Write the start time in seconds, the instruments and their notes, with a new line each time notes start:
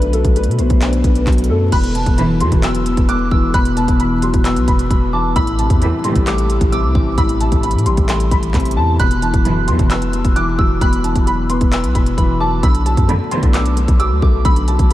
Already playing: 808-style bass B1, grand piano D3 F#3 A3 B3 D4 B4
0.02 closed hi-hat
0.13 grand piano F#3 A4, closed hi-hat
0.25 808-style bass B1, kick, closed hi-hat
0.36 grand piano A3 B4, closed hi-hat
0.43 808-style bass B2, closed hi-hat
0.51 closed hi-hat
0.59 808-style bass B1, grand piano B2 C5, closed hi-hat
0.70 808-style bass B1, kick, closed hi-hat
0.81 grand piano D4, clap, closed hi-hat
0.93 closed hi-hat
1.04 808-style bass B1, grand piano D3 B4, kick, closed hi-hat
1.15 closed hi-hat
1.27 808-style bass B1, grand piano F#3, kick, clap, closed hi-hat
1.33 closed hi-hat
1.38 closed hi-hat
1.44 closed hi-hat
1.50 808-style bass F#2, grand piano A3 A4
1.72 808-style bass E1, grand piano E2 B5, synth bell F#6, kick, closed hi-hat, crash
1.84 closed hi-hat
1.95 grand piano B2 A5, closed hi-hat
2.06 808-style bass E1, kick, closed hi-hat
2.18 string section B1 F#2 E3, grand piano E3 B5, closed hi-hat
2.40 string section B1 F#2 E3, 808-style bass E2, grand piano F#3 C6, closed hi-hat
2.52 808-style bass E1, kick, closed hi-hat
2.63 grand piano B3 E6, synth bell E6, clap, closed hi-hat
2.75 closed hi-hat
2.86 grand piano E2, closed hi-hat
2.97 808-style bass E1, kick, closed hi-hat
3.08 grand piano B2 D6, synth bell F#6, closed hi-hat
3.31 808-style bass E1, grand piano E3, synth bell E6, kick
3.54 808-style bass E1, grand piano E2 B5, synth bell F#6, kick, closed hi-hat
3.65 closed hi-hat
3.76 grand piano B2 A5, closed hi-hat
3.88 808-style bass E1, kick, closed hi-hat
4.00 grand piano E3 B5, closed hi-hat
4.22 grand piano F#3 C6, closed hi-hat
4.34 808-style bass E1, kick, closed hi-hat
4.45 grand piano B3, synth bell E6, clap, closed hi-hat
4.56 808-style bass B1, closed hi-hat
4.68 808-style bass E1, grand piano E2 B5, kick, closed hi-hat
4.79 closed hi-hat
4.90 808-style bass E1, grand piano B2, synth bell B5, kick, closed hi-hat
5.13 grand piano E3 A5, synth bell D6
5.36 808-style bass A1, grand piano A2 B5, synth bell E6, kick, closed hi-hat
5.47 closed hi-hat
5.59 grand piano C3 A5, closed hi-hat
5.70 808-style bass E2, kick, closed hi-hat
5.81 string section C2 A2 E3, grand piano E3 B5, closed hi-hat
6.04 string section C2 A2 E3, grand piano G3 C6, closed hi-hat
6.15 808-style bass A1, kick, closed hi-hat
6.27 grand piano A3 E6, synth bell D6, clap, closed hi-hat
6.38 closed hi-hat
6.49 grand piano A2, closed hi-hat
6.61 808-style bass A1, kick, closed hi-hat
6.72 grand piano C3 D6, synth bell E6, closed hi-hat
6.84 808-style bass C2
6.95 808-style bass A1, grand piano E3, synth bell D6, kick
7.18 808-style bass A1, grand piano A2 B5, synth bell E6, kick, closed hi-hat
7.29 closed hi-hat
7.40 grand piano C3 A5, closed hi-hat
7.52 808-style bass A1, kick, closed hi-hat
7.63 grand piano E3 B5, closed hi-hat
7.71 808-style bass A2, closed hi-hat
7.78 closed hi-hat
7.86 808-style bass A1, grand piano G3 C6, closed hi-hat
7.97 808-style bass A1, kick, closed hi-hat
8.09 grand piano A3, synth bell C6, clap, closed hi-hat
8.20 closed hi-hat
8.31 808-style bass A1, grand piano A2 B5, kick, closed hi-hat
8.43 closed hi-hat
8.54 808-style bass A1, grand piano C3, kick, clap, closed hi-hat
8.60 closed hi-hat
8.65 closed hi-hat
8.71 closed hi-hat
8.77 808-style bass E2, grand piano E3 A5
9.00 808-style bass E1, grand piano B2 B5, synth bell F#6, kick, closed hi-hat
9.11 closed hi-hat
9.22 grand piano E3 A5, closed hi-hat
9.34 808-style bass E1, kick, closed hi-hat
9.45 string section B1 F#2 E3, grand piano F#3 B5, closed hi-hat
9.68 string section B1 F#2 E3, 808-style bass E2, grand piano B3 C6, closed hi-hat
9.79 808-style bass E1, kick, closed hi-hat
9.90 grand piano B4 E6, synth bell E6, clap, closed hi-hat
10.02 closed hi-hat
10.13 grand piano B2, closed hi-hat
10.25 808-style bass E1, kick, closed hi-hat
10.36 grand piano E3 D6, synth bell F#6, closed hi-hat
10.58 808-style bass E1, grand piano F#3, synth bell E6, kick
10.81 808-style bass E1, grand piano B2 B5, synth bell F#6, kick, closed hi-hat
10.93 closed hi-hat
11.04 grand piano E3 A5, closed hi-hat
11.15 808-style bass E1, kick, closed hi-hat
11.27 grand piano F#3 B5, closed hi-hat
11.50 grand piano B3 C6, closed hi-hat
11.61 808-style bass E1, kick, closed hi-hat
11.72 grand piano B4, synth bell E6, clap, closed hi-hat
11.84 808-style bass B1, closed hi-hat
11.95 808-style bass E1, grand piano B2 B5, kick, closed hi-hat
12.06 closed hi-hat
12.17 808-style bass E1, grand piano E3, synth bell B5, kick, closed hi-hat
12.40 grand piano F#3 A5, synth bell D6
12.63 808-style bass B1, grand piano D3 B5, synth bell E6, kick, closed hi-hat
12.75 closed hi-hat
12.86 grand piano F#3 A5, closed hi-hat
12.97 808-style bass F#2, kick, closed hi-hat
13.08 string section B1 A2 D3, grand piano A3 B5, closed hi-hat
13.31 string section B1 A2 D3, grand piano B3 C6, closed hi-hat
13.43 808-style bass B1, kick, closed hi-hat
13.54 grand piano D4 E6, synth bell D6, clap, closed hi-hat
13.66 closed hi-hat
13.76 grand piano D3, closed hi-hat
13.88 808-style bass B1, kick, closed hi-hat
14.00 grand piano F#3 D6, synth bell E6, closed hi-hat
14.11 808-style bass D2
14.22 808-style bass B1, grand piano A3, synth bell D6, kick
14.45 808-style bass B1, grand piano D3 B5, synth bell E6, kick, closed hi-hat
14.56 closed hi-hat
14.68 grand piano F#3 A5, closed hi-hat
14.79 808-style bass B1, kick, closed hi-hat